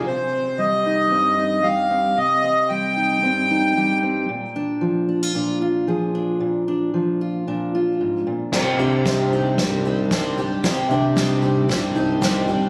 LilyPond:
<<
  \new Staff \with { instrumentName = "Accordion" } { \time 4/4 \key c \minor \tempo 4 = 113 c''4 ees''2 f''4 | ees''4 g''2~ g''8 r8 | r1 | r1 |
r1 | r1 | }
  \new Staff \with { instrumentName = "Steel-string acoustic guitar" } { \time 4/4 \key c \minor << { r8 c'4 ees'8 c'8 ees'8 g'8 c'8 | r8 c'4 ees'8 c'8 ees'8 g'8 c'8 | r8 d'4 d'16 f'16 d'8 f'8 aes'8 d'8 | r8 d'4 f'8 d'8 f'4. |
r8 d'4 ees'8 d'8 ees'4 g'8~ | g'8 d'4 ees'8 d'8 ees'4 g'8 | } \\ { c4 g4 g,4 g4 | c4 g4 g,4 g4 | bes,4 f4 bes,4 f4 | bes,4 f4 bes,4 aes,8 bes,8 |
c4 g4 g,4 g4 | c4 g4 g,4 g4 | } >> }
  \new Staff \with { instrumentName = "Twelve-string acoustic guitar" } { \time 4/4 \key c \minor r1 | r1 | r1 | r1 |
<c ees g c' d' g'>8 <g c' d' g'>8 <c ees g c' d' g'>8 <g c' d' g'>8 <g c' d' g'>8 <g c' d' g'>8 <c ees g c' d' g'>8 <g c' d' g'>8 | <c ees g c' d' g'>8 <g c' d' g'>8 <c ees g c' d' g'>8 <g c' d' g'>8 <g c' d' g'>8 <g c' d' g'>8 <c ees g c' d' g'>8 <g c' d' g'>8 | }
  \new Staff \with { instrumentName = "Analog synth bass" } { \clef bass \time 4/4 \key c \minor r1 | r1 | r1 | r1 |
c,16 r16 c4. c,2 | c,16 r16 c4. c,2 | }
  \new DrumStaff \with { instrumentName = "Drums" } \drummode { \time 4/4 r4 r4 r4 r4 | r4 r4 r4 r4 | r4 r4 r4 r4 | r4 r4 r4 r4 |
<cymc bd sn tomfh>8 tomfh8 <bd sn tomfh>8 tomfh8 <bd sn tomfh>8 tomfh8 <bd sn tomfh>8 tomfh8 | <bd sn tomfh>8 tomfh8 <bd sn tomfh>8 tomfh8 <bd sn tomfh>8 tomfh8 <bd sn tomfh>8 tomfh8 | }
>>